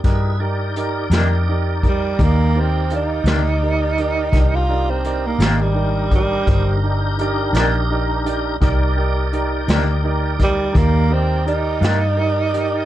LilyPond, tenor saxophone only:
\new Staff \with { instrumentName = "Tenor saxophone" } { \time 12/8 \key c \minor \tempo 4. = 56 r2 r8 g8 bes8 c'8 ees'2~ | ees'16 f'8 c'8 bes8 g8. g4 r2 r8 | r2 r8 g8 bes8 c'8 ees'2 | }